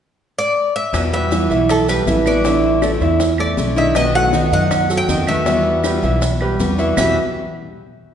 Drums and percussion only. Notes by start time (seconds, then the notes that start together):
0.94 high bongo, claves, maracas
1.13 high bongo
1.32 high bongo, maracas
1.51 high bongo, maracas
1.69 high bongo, claves, maracas
1.88 high bongo, maracas
2.07 high bongo, low bongo, maracas
2.26 claves, maracas
2.45 high bongo, maracas
2.63 high bongo
2.82 high bongo, claves, maracas
3.01 high bongo, maracas
3.20 high bongo, maracas
3.38 high bongo, claves
3.57 high bongo, low bongo, maracas
3.77 maracas
3.95 high bongo, claves, maracas
4.14 high bongo
4.33 high bongo, maracas
4.52 high bongo, maracas
4.71 high bongo, claves, maracas
4.90 high bongo, maracas
5.09 high bongo, low bongo, maracas
5.27 claves, maracas
5.46 high bongo, maracas
5.65 high bongo
5.84 high bongo, claves, maracas
6.03 high bongo, maracas
6.22 high bongo, maracas
6.41 high bongo, claves
6.60 high bongo, low bongo, maracas
6.79 maracas
6.97 low bongo, claves, maracas